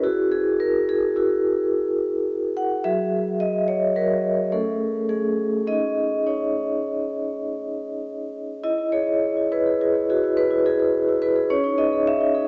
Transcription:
0.03 E4 F#4 G#4
0.32 G#4
0.60 A#4
0.89 G#4
1.16 E4 F#4 G#4
2.57 F#5
2.84 F#3 F#4 G#4 E5
3.40 D#5
3.68 C#5
3.96 F#3 F#4 G#4 A#4
4.52 A3 C#4 G#4 A4
5.09 A3 C#4 G#4
5.67 C#4 D#4 G#4 D#5
6.26 C#4 D#4 G#4 C#5
8.64 E4 D#5
8.78 E4
8.92 E4 G#4 C#5
9.07 G#4
9.37 E4
9.52 E4 G#4 B4
9.66 G#4
9.81 E4 G#4
9.95 G#4
10.10 E4 F#4 G#4
10.24 E4
10.37 G#4 B4
10.51 E4
10.66 E4 G#4
10.79 G#4
11.08 E4
11.22 E4 G#4 B4
11.36 G#4
11.50 C#4 C#5
11.64 D#4
11.78 D#4 G#4 D#5
11.93 G#4
12.07 E5
12.21 D#4
12.34 D#4 G#4

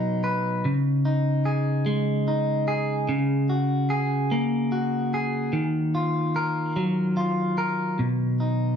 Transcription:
Already playing: B2 F#3 D#4 B4
0.24 B4
0.65 C#3
1.05 D#4
1.45 G#4
1.86 G#3
2.28 D#4
2.68 G#4
3.09 C#3
3.50 F#4
3.90 G#4
4.31 A#3
4.72 F#4
5.14 G#4
5.53 D#3
5.95 F4
6.36 A#4
6.76 F#3
7.17 F4
7.58 A#4
7.99 B2
8.40 D#4

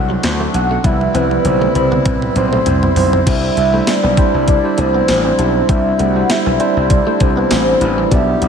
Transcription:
Already playing: C2 F#3 A3 C4 D4 E4 A4 F#5
0.10 F#3
0.23 D2, snare, closed hi-hat
0.40 A3
0.54 B1 F#5, muted clean electric guitar stroke, closed hi-hat
0.71 A3
0.84 C2 G3 B3 C4 E4 B4 E5, kick, closed hi-hat, high tom
1.01 high tom
1.14 C2 G3 C4 E4 B4, closed hi-hat, high tom
1.31 muted clean electric guitar stroke, high tom
1.45 B1 C5, closed hi-hat, mid tom
1.61 A3, mid tom
1.75 C2 G3 C4 E4 B5, muted clean electric guitar stroke, closed hi-hat, mid tom
1.92 B3, mid tom
2.06 C2 C4 B4, kick, closed hi-hat, mid tom
2.22 mid tom
2.36 B1 C5, muted clean electric guitar stroke, closed hi-hat, mid tom
2.53 A3, mid tom
2.66 C2, closed hi-hat, floor tom
2.83 B3, floor tom
2.96 B1, muted clean electric guitar stroke, floor tom, open hi-hat
3.13 C4, floor tom
3.26 C2 D3 G3 C4 D4 E4 C5 E5, kick, closed hi-hat, crash
3.57 C2, muted clean electric guitar stroke, closed hi-hat
3.73 G3 A3 D4 E4 C5
3.87 D5, muted clean electric guitar stroke, snare, closed hi-hat, tambourine
4.03 B1 B3
4.17 G3 C4 D4 E4 C5, kick, closed hi-hat
4.34 C2
4.47 D5, muted clean electric guitar stroke, kick, closed hi-hat
4.64 G3 D4 E4 C5
4.78 C2 A3 C5, closed hi-hat
4.94 B3
5.08 A1, muted clean electric guitar stroke, snare, closed hi-hat, tambourine
5.25 C4
5.38 B1 G3 D4 E4 G4, closed hi-hat
5.68 C2 G3 C4 D4 E4 C5 E5, kick, closed hi-hat
5.99 C2 A3 F#5, closed hi-hat
6.15 G3 D4 E4 C5, muted clean electric guitar stroke
6.29 E5, muted clean electric guitar stroke, snare, closed hi-hat, tambourine
6.46 B1 B3
6.59 G3 C4 D4 E4 C5 E5, closed hi-hat
6.77 C2
6.90 D5, kick, closed hi-hat
7.06 G3 A3 D4 E4 C5
7.20 C2 C5, muted clean electric guitar stroke, kick, closed hi-hat
7.37 B3
7.51 A1 A3, snare, closed hi-hat, tambourine
7.80 A1 G3 D4 E4 B4, muted clean electric guitar stroke, closed hi-hat
7.98 G3
8.11 B1 G3 B3 D4 G4 D5 E5, kick, closed hi-hat
8.42 B1, muted clean electric guitar stroke, closed hi-hat

